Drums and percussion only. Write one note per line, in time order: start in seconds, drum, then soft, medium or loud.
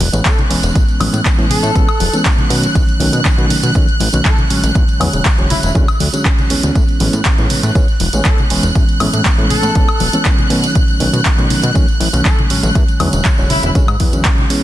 0.00 open hi-hat loud
0.00 high conga medium
0.13 closed hi-hat medium
0.13 tambourine medium
0.25 kick loud
0.25 clap loud
0.25 closed hi-hat medium
0.25 tambourine medium
0.38 closed hi-hat soft
0.38 tambourine soft
0.38 low conga loud
0.51 open hi-hat loud
0.63 closed hi-hat medium
0.63 tambourine medium
0.75 kick loud
0.75 closed hi-hat medium
0.88 closed hi-hat soft
0.88 tambourine soft
1.01 open hi-hat loud
1.01 high conga medium
1.01 high woodblock medium
1.14 closed hi-hat medium
1.14 tambourine medium
1.25 kick loud
1.25 clap loud
1.25 closed hi-hat medium
1.25 tambourine medium
1.39 closed hi-hat soft
1.39 tambourine soft
1.49 open hi-hat loud
1.49 low conga medium
1.63 closed hi-hat medium
1.63 tambourine medium
1.75 kick loud
1.75 closed hi-hat medium
1.75 tambourine medium
1.89 closed hi-hat soft
1.89 tambourine soft
1.89 high woodblock medium
2.00 open hi-hat loud
2.00 high conga loud
2.13 closed hi-hat medium
2.13 tambourine medium
2.25 kick loud
2.25 clap loud
2.25 closed hi-hat medium
2.25 tambourine medium
2.38 closed hi-hat soft
2.38 tambourine soft
2.38 low conga medium
2.50 open hi-hat loud
2.63 closed hi-hat medium
2.63 tambourine medium
2.75 kick loud
2.75 closed hi-hat medium
2.75 tambourine medium
2.89 closed hi-hat soft
2.89 tambourine soft
3.00 open hi-hat loud
3.00 high conga medium
3.12 closed hi-hat medium
3.12 tambourine medium
3.25 kick loud
3.25 clap loud
3.25 closed hi-hat medium
3.25 tambourine medium
3.38 closed hi-hat soft
3.38 tambourine soft
3.50 open hi-hat loud
3.50 low conga medium
3.63 closed hi-hat medium
3.63 tambourine medium
3.74 kick loud
3.74 closed hi-hat medium
3.74 tambourine medium
3.87 closed hi-hat soft
3.87 tambourine soft
4.00 open hi-hat loud
4.00 high conga medium
4.13 closed hi-hat medium
4.13 tambourine medium
4.25 kick loud
4.25 clap loud
4.25 closed hi-hat medium
4.25 tambourine medium
4.38 closed hi-hat soft
4.38 tambourine soft
4.38 low conga medium
4.50 open hi-hat loud
4.63 closed hi-hat medium
4.63 tambourine medium
4.75 kick loud
4.75 closed hi-hat medium
4.75 tambourine medium
4.88 closed hi-hat soft
4.88 tambourine soft
5.00 open hi-hat loud
5.00 high conga medium
5.00 high woodblock medium
5.13 closed hi-hat soft
5.13 tambourine medium
5.25 kick loud
5.25 clap loud
5.25 closed hi-hat soft
5.25 tambourine medium
5.38 closed hi-hat soft
5.38 tambourine soft
5.50 open hi-hat loud
5.50 low conga medium
5.63 closed hi-hat soft
5.63 tambourine medium
5.75 kick loud
5.75 closed hi-hat soft
5.88 closed hi-hat soft
5.88 tambourine soft
5.88 high woodblock medium
6.00 open hi-hat loud
6.00 high conga medium
6.14 closed hi-hat soft
6.14 tambourine medium
6.25 kick loud
6.25 clap loud
6.25 closed hi-hat medium
6.38 closed hi-hat soft
6.38 tambourine soft
6.38 low conga loud
6.50 open hi-hat loud
6.63 closed hi-hat medium
6.63 tambourine medium
6.75 kick loud
6.75 closed hi-hat medium
6.75 tambourine medium
6.88 closed hi-hat soft
6.88 tambourine soft
7.00 open hi-hat loud
7.00 high conga medium
7.13 closed hi-hat medium
7.13 tambourine medium
7.25 kick loud
7.25 clap loud
7.25 closed hi-hat medium
7.25 tambourine medium
7.38 closed hi-hat soft
7.38 tambourine soft
7.50 open hi-hat loud
7.50 low conga medium
7.63 closed hi-hat soft
7.63 tambourine medium
7.75 kick loud
7.75 closed hi-hat soft
7.75 tambourine medium
7.88 closed hi-hat soft
7.88 tambourine soft
8.00 open hi-hat loud
8.00 high conga medium
8.13 closed hi-hat medium
8.13 tambourine medium
8.25 kick loud
8.25 clap loud
8.25 closed hi-hat medium
8.38 closed hi-hat soft
8.38 tambourine soft
8.38 low conga medium
8.50 open hi-hat loud
8.63 closed hi-hat medium
8.63 tambourine medium
8.75 kick loud
8.75 closed hi-hat medium
8.75 tambourine medium
8.89 closed hi-hat soft
8.89 tambourine soft
9.00 open hi-hat loud
9.00 high conga medium
9.00 high woodblock medium
9.13 closed hi-hat medium
9.13 tambourine medium
9.25 kick loud
9.25 clap loud
9.25 closed hi-hat medium
9.25 tambourine medium
9.38 closed hi-hat soft
9.38 tambourine soft
9.50 open hi-hat loud
9.50 low conga medium
9.63 closed hi-hat soft
9.63 tambourine medium
9.75 kick loud
9.75 closed hi-hat medium
9.75 tambourine medium
9.88 closed hi-hat soft
9.88 tambourine soft
9.88 high woodblock medium
10.00 open hi-hat loud
10.00 high conga medium
10.13 closed hi-hat medium
10.13 tambourine medium
10.25 kick loud
10.25 clap loud
10.25 closed hi-hat medium
10.25 tambourine medium
10.38 closed hi-hat soft
10.38 tambourine soft
10.38 low conga medium
10.50 open hi-hat loud
10.64 closed hi-hat medium
10.64 tambourine medium
10.75 kick loud
10.75 closed hi-hat medium
10.75 tambourine medium
10.88 closed hi-hat soft
10.88 tambourine soft
11.00 open hi-hat loud
11.00 high conga medium
11.14 closed hi-hat medium
11.14 tambourine medium
11.25 kick loud
11.25 clap loud
11.25 closed hi-hat medium
11.25 tambourine medium
11.38 closed hi-hat soft
11.38 tambourine soft
11.50 open hi-hat loud
11.50 low conga medium
11.62 closed hi-hat medium
11.62 tambourine medium
11.75 kick loud
11.75 closed hi-hat medium
11.75 tambourine medium
11.88 closed hi-hat soft
11.88 tambourine soft
12.01 open hi-hat loud
12.01 high conga medium
12.13 closed hi-hat medium
12.13 tambourine medium
12.25 kick loud
12.25 clap loud
12.25 closed hi-hat medium
12.25 tambourine medium
12.39 closed hi-hat soft
12.39 tambourine soft
12.39 low conga loud
12.50 open hi-hat loud
12.63 closed hi-hat medium
12.63 tambourine medium
12.75 kick loud
12.75 closed hi-hat medium
12.75 tambourine medium
12.88 closed hi-hat soft
12.88 tambourine soft
13.00 open hi-hat loud
13.00 high conga medium
13.00 high woodblock medium
13.13 closed hi-hat medium
13.13 tambourine medium
13.25 kick loud
13.25 clap loud
13.25 closed hi-hat medium
13.25 tambourine medium
13.38 closed hi-hat soft
13.38 tambourine soft
13.50 open hi-hat loud
13.50 low conga medium
13.63 closed hi-hat medium
13.63 tambourine medium
13.75 kick loud
13.75 closed hi-hat medium
13.75 tambourine medium
13.88 closed hi-hat soft
13.88 tambourine soft
13.88 high woodblock medium
14.00 kick medium
14.00 open hi-hat loud
14.00 high conga medium
14.13 closed hi-hat medium
14.13 tambourine medium
14.25 kick loud
14.25 clap loud
14.25 closed hi-hat medium
14.25 tambourine medium
14.38 closed hi-hat soft
14.38 tambourine soft
14.38 low conga medium
14.50 open hi-hat loud